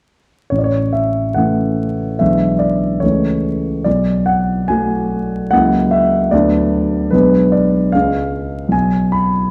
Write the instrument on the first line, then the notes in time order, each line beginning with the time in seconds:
grand piano
0.50 A1 C#5
0.58 D5
0.64 C#5
0.93 E5
1.34 E3 A3 C#4 F#5
2.19 B1 E3 G#3 D4 E5
2.59 D5
3.00 C#2 E3 A3 C#4 C#5
3.84 B1 D5
4.26 F#5
4.68 F#3 A3 F#4 G#5
5.51 C#2 F#3 A#3 E4 F#5
5.91 E5
6.31 D2 F#3 B3 D4 D5
7.11 B1 G#3 B3 D4 B4
7.52 D5
7.92 C#2 G#3 C#4 F5
8.69 B1 G#5
9.12 B5